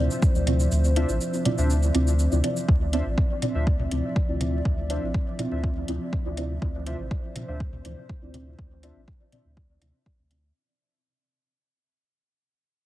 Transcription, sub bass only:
0.35 0.68 D2 medium
0.72 1.05 D2 loud
1.09 1.18 A1 medium
1.58 1.91 D2 medium
1.95 2.28 D2 medium
2.32 2.41 D2 medium
2.69 3.02 D2 medium
3.06 3.15 A1 medium
3.55 3.87 D2 medium
3.91 4.01 D2 medium
4.29 4.61 D2 medium
4.65 4.98 D2 loud
5.03 5.12 A1 medium
5.52 5.84 D2 medium
5.88 5.98 D2 medium
6.25 6.58 D2 medium
6.62 6.95 D2 loud
6.99 7.09 A1 medium
7.48 7.81 D2 medium
7.85 7.95 D2 medium
8.22 8.55 D2 medium
8.59 8.92 D2 loud
8.96 9.05 A1 medium
9.45 9.78 D2 medium
9.81 9.92 D2 medium
10.19 10.51 D2 medium

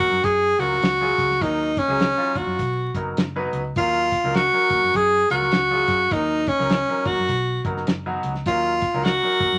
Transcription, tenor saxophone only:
0.00 0.26 F#4 loud
0.24 0.61 G#4 loud
0.59 1.44 F#4 loud
1.42 1.80 D#4 loud
1.78 2.39 C#4 loud
2.37 2.95 F#4 medium
3.78 4.38 F4 loud
4.36 4.98 F#4 loud
4.96 5.31 G#4 loud
5.31 6.14 F#4 loud
6.13 6.50 D#4 loud
6.48 7.08 C#4 loud
7.07 7.65 F#4 loud
8.47 9.06 F4 loud
9.05 9.59 F#4 loud

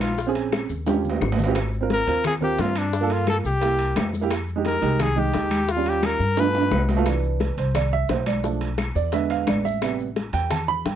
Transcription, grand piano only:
0.27 0.69 C4 medium
0.27 0.70 C#4 medium
0.27 0.70 G#4 medium
0.87 1.29 C#4 medium
0.87 1.30 F4 medium
0.87 1.30 G4 loud
1.46 1.55 C#4 medium
1.46 1.56 F4 medium
1.46 1.56 G4 loud
1.81 1.99 C4 medium
1.81 2.00 F4 medium
1.81 2.00 A#4 medium
2.07 2.31 C4 medium
2.07 2.32 F4 medium
2.07 2.32 A#4 medium
2.41 2.83 C4 medium
2.41 2.84 F4 medium
2.41 2.84 A#4 medium
3.01 3.44 A#3 medium
3.01 3.44 F4 medium
3.01 3.45 A4 loud
3.61 4.04 A#3 medium
3.61 4.04 E4 medium
3.61 4.05 G4 medium
4.21 4.30 A#3 medium
4.21 4.31 E4 medium
4.21 4.31 G4 loud
4.56 4.74 G#3 medium
4.56 4.75 D#4 medium
4.56 4.75 G4 medium
4.82 5.06 G#3 medium
4.82 5.06 D#4 medium
4.82 5.07 G4 medium
5.16 5.59 G#3 medium
5.16 5.59 D#4 medium
5.16 5.59 G4 medium
5.77 6.19 G3 medium
5.77 6.19 C#4 medium
5.77 6.20 F4 medium
6.37 6.79 A3 medium
6.37 6.80 B3 medium
6.37 6.80 F4 medium
6.97 7.06 A3 medium
6.97 7.05 B3 medium
6.97 7.07 F4 loud
7.06 7.55 E3 medium
7.06 7.55 B3 soft
7.06 7.56 D4 medium
7.58 7.75 C5 medium
7.75 7.92 D5 medium
7.93 8.09 E5 loud
8.10 8.26 C5 medium
8.27 8.59 D5 medium
8.44 8.67 F3 soft
8.44 8.67 A3 soft
8.44 8.67 D4 medium
8.96 9.13 D5 medium
9.13 9.62 D3 medium
9.13 9.62 G#3 medium
9.13 9.63 B3 medium
9.13 9.30 E5 medium
9.30 9.47 F5 loud
9.48 9.65 D5 medium
9.65 9.97 E5 medium
9.82 10.05 C3 medium
9.82 10.05 G3 soft
9.82 10.06 B3 medium
10.34 10.51 G5 loud
10.51 10.68 A5 medium
10.68 10.85 B5 loud
10.86 10.95 G5 medium

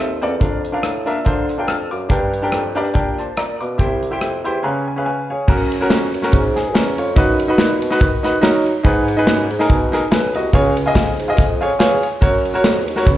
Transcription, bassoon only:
0.00 0.19 D#2 medium
0.22 0.38 E2 medium
0.41 0.77 F2 medium
0.83 1.04 A2 medium
1.07 1.23 A#2 medium
1.26 1.70 D3 medium
1.68 1.88 F2 medium
1.92 2.08 F#2 medium
2.10 2.46 G2 loud
2.53 2.73 F2 medium
2.77 2.92 G2 medium
2.95 3.31 A#2 medium
3.38 3.58 A#2 medium
3.61 3.77 B2 medium
3.79 4.15 C2 medium
4.22 4.42 F2 medium
4.46 4.61 E2 medium
5.48 5.84 F#2 loud
5.91 6.11 F2 medium
6.14 6.30 F#2 medium
6.33 6.76 G#2 loud
6.74 6.95 E2 loud
6.98 7.14 F2 medium
7.16 7.52 F#2 loud
7.58 7.79 A#2 loud
7.82 7.98 B2 medium
8.01 8.37 D#3 medium
8.43 8.79 F#3 loud
8.85 9.21 G#2 loud
9.27 9.47 F#2 loud
9.50 9.71 G#2 medium
9.70 10.05 B2 medium
10.11 10.31 B1 loud
10.35 10.51 C2 loud
10.53 10.89 C#2 loud
10.95 11.16 F2 loud
11.19 11.40 G#2 medium
11.38 11.74 F2 loud
11.80 12.00 E2 loud
12.22 12.58 F#2 loud
12.64 12.89 F2 loud
12.87 13.08 D#2 medium
13.07 13.18 C#2 loud

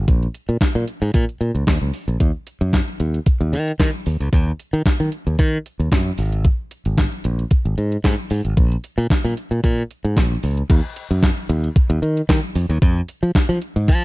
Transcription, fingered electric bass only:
0.08 0.26 A#1 loud
0.49 0.57 A#2 medium
0.61 muted fingered electric bass stroke soft
0.75 0.84 A#2 loud
1.02 1.10 G#2 loud
1.14 1.24 A#2 loud
1.41 1.50 A#2 medium
1.55 1.63 C#2 medium
1.67 1.77 D#2 medium
1.81 1.90 C#2 medium
2.08 2.16 A#1 medium
2.20 2.30 D#2 medium
2.61 2.79 F#2 medium
3.00 3.18 D#2 medium
3.41 3.54 D#2 medium
3.53 3.71 D#3 medium
3.80 3.89 D#3 loud
4.07 4.16 D#2 medium
4.20 4.29 C#2 medium
4.33 4.51 D#2 loud
4.73 4.82 D#3 medium
4.86 muted fingered electric bass stroke soft
5.00 5.08 D#3 medium
5.27 5.35 D#2 loud
5.39 5.57 D#3 loud
5.79 5.88 D#2 medium
5.92 6.10 F#2 loud
6.19 6.46 G#1 loud
6.86 7.04 G#1 medium
7.25 7.43 A#1 loud
7.65 7.74 G#1 medium
7.78 7.96 G#2 loud
8.04 8.14 G#2 loud
8.31 8.40 G#2 loud
8.45 8.53 G#1 medium
8.57 8.75 A#1 loud
8.98 9.06 A#2 loud
9.10 muted fingered electric bass stroke soft
9.25 9.33 A#2 loud
9.51 9.60 A#2 medium
9.64 9.82 A#2 loud
10.04 10.18 G#2 medium
10.17 10.35 A#1 loud
10.44 10.62 C#2 medium
10.70 10.79 D#2 loud
11.11 11.29 F#2 medium
11.49 11.68 D#2 loud
11.90 11.98 D#2 loud
12.02 12.21 D#3 loud
12.29 12.39 D#3 loud
12.55 12.65 F2 loud
12.69 12.78 D#2 loud
12.82 13.00 F2 loud
13.23 13.31 F3 medium
13.35 muted fingered electric bass stroke soft
13.49 13.58 F3 loud
13.76 13.90 G#2 loud
13.88 14.04 F3 loud

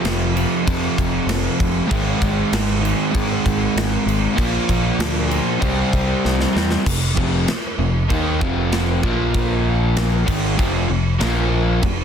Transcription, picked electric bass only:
0.04 0.44 F1 medium
0.67 0.87 F2 loud
0.98 1.18 F1 medium
1.26 1.47 F1 medium
1.60 1.80 F1 medium
1.92 2.11 G#1 loud
2.22 2.42 G#1 medium
2.52 2.92 G#1 loud
3.15 3.35 G#2 loud
3.46 3.65 G#1 loud
3.76 3.96 G#1 medium
4.06 4.26 G#1 medium
4.38 4.58 A#1 loud
4.69 4.89 A#1 medium
4.99 5.39 D2 medium
5.62 5.82 C2 loud
5.93 6.13 C2 medium
6.25 6.45 C2 medium
6.56 6.75 E2 medium
6.86 7.15 F1 medium
7.17 7.46 F1 loud
7.48 muted picked electric bass stroke soft
7.78 8.07 F1 medium
8.10 8.39 D#2 loud
8.41 8.99 F1 loud
9.04 10.23 A#1 medium
10.28 10.56 G#1 loud
10.59 10.87 F1 loud
10.89 11.18 F1 medium
11.22 11.79 A#1 loud
11.83 12.04 F1 medium

